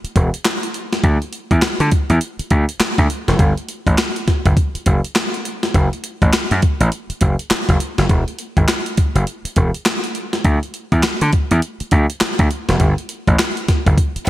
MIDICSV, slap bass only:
0, 0, Header, 1, 3, 480
1, 0, Start_track
1, 0, Tempo, 588235
1, 845, Time_signature, 4, 2, 24, 8
1, 11666, End_track
2, 0, Start_track
2, 0, Title_t, "Slap bass"
2, 0, Program_c, 0, 36
2, 129, Note_on_c, 0, 28, 82
2, 237, Note_off_c, 0, 28, 0
2, 846, Note_on_c, 0, 38, 95
2, 954, Note_off_c, 0, 38, 0
2, 1232, Note_on_c, 0, 40, 85
2, 1300, Note_off_c, 0, 40, 0
2, 1471, Note_on_c, 0, 50, 98
2, 1539, Note_off_c, 0, 50, 0
2, 1711, Note_on_c, 0, 40, 77
2, 1779, Note_off_c, 0, 40, 0
2, 2047, Note_on_c, 0, 38, 87
2, 2155, Note_off_c, 0, 38, 0
2, 2435, Note_on_c, 0, 38, 82
2, 2502, Note_off_c, 0, 38, 0
2, 2676, Note_on_c, 0, 28, 80
2, 2743, Note_off_c, 0, 28, 0
2, 2767, Note_on_c, 0, 31, 90
2, 2875, Note_off_c, 0, 31, 0
2, 3155, Note_on_c, 0, 33, 79
2, 3222, Note_off_c, 0, 33, 0
2, 3636, Note_on_c, 0, 31, 79
2, 3703, Note_off_c, 0, 31, 0
2, 3970, Note_on_c, 0, 30, 92
2, 4077, Note_off_c, 0, 30, 0
2, 4688, Note_on_c, 0, 30, 90
2, 4796, Note_off_c, 0, 30, 0
2, 5073, Note_on_c, 0, 33, 76
2, 5141, Note_off_c, 0, 33, 0
2, 5314, Note_on_c, 0, 42, 95
2, 5382, Note_off_c, 0, 42, 0
2, 5552, Note_on_c, 0, 33, 87
2, 5620, Note_off_c, 0, 33, 0
2, 5887, Note_on_c, 0, 30, 84
2, 5995, Note_off_c, 0, 30, 0
2, 6272, Note_on_c, 0, 30, 78
2, 6340, Note_off_c, 0, 30, 0
2, 6512, Note_on_c, 0, 30, 75
2, 6580, Note_off_c, 0, 30, 0
2, 6605, Note_on_c, 0, 28, 97
2, 6714, Note_off_c, 0, 28, 0
2, 6990, Note_on_c, 0, 32, 77
2, 7059, Note_off_c, 0, 32, 0
2, 7468, Note_on_c, 0, 30, 85
2, 7538, Note_off_c, 0, 30, 0
2, 7806, Note_on_c, 0, 28, 79
2, 7915, Note_off_c, 0, 28, 0
2, 8523, Note_on_c, 0, 38, 94
2, 8633, Note_off_c, 0, 38, 0
2, 8910, Note_on_c, 0, 40, 88
2, 8979, Note_off_c, 0, 40, 0
2, 9152, Note_on_c, 0, 50, 89
2, 9220, Note_off_c, 0, 50, 0
2, 9394, Note_on_c, 0, 40, 81
2, 9461, Note_off_c, 0, 40, 0
2, 9727, Note_on_c, 0, 38, 96
2, 9835, Note_off_c, 0, 38, 0
2, 10112, Note_on_c, 0, 38, 95
2, 10180, Note_off_c, 0, 38, 0
2, 10352, Note_on_c, 0, 28, 82
2, 10420, Note_off_c, 0, 28, 0
2, 10444, Note_on_c, 0, 31, 103
2, 10554, Note_off_c, 0, 31, 0
2, 10832, Note_on_c, 0, 33, 85
2, 10900, Note_off_c, 0, 33, 0
2, 11313, Note_on_c, 0, 31, 75
2, 11381, Note_off_c, 0, 31, 0
2, 11666, End_track
3, 0, Start_track
3, 0, Title_t, "Muted slap bass strokes"
3, 34, Note_on_c, 9, 29, 43
3, 116, Note_off_c, 9, 29, 0
3, 1324, Note_on_c, 9, 29, 47
3, 1406, Note_off_c, 9, 29, 0
3, 1953, Note_on_c, 9, 29, 47
3, 2034, Note_off_c, 9, 29, 0
3, 2284, Note_on_c, 9, 29, 45
3, 2365, Note_off_c, 9, 29, 0
3, 3490, Note_on_c, 9, 29, 48
3, 3571, Note_off_c, 9, 29, 0
3, 3875, Note_on_c, 9, 29, 43
3, 3956, Note_off_c, 9, 29, 0
3, 5168, Note_on_c, 9, 29, 45
3, 5250, Note_off_c, 9, 29, 0
3, 5791, Note_on_c, 9, 29, 44
3, 5873, Note_off_c, 9, 29, 0
3, 6124, Note_on_c, 9, 29, 46
3, 6206, Note_off_c, 9, 29, 0
3, 7326, Note_on_c, 9, 29, 44
3, 7407, Note_off_c, 9, 29, 0
3, 7710, Note_on_c, 9, 29, 45
3, 7791, Note_off_c, 9, 29, 0
3, 9006, Note_on_c, 9, 29, 46
3, 9087, Note_off_c, 9, 29, 0
3, 9634, Note_on_c, 9, 29, 43
3, 9716, Note_off_c, 9, 29, 0
3, 9966, Note_on_c, 9, 29, 42
3, 10047, Note_off_c, 9, 29, 0
3, 11167, Note_on_c, 9, 29, 47
3, 11249, Note_off_c, 9, 29, 0
3, 11553, Note_on_c, 9, 29, 43
3, 11635, Note_off_c, 9, 29, 0
3, 11666, End_track
0, 0, End_of_file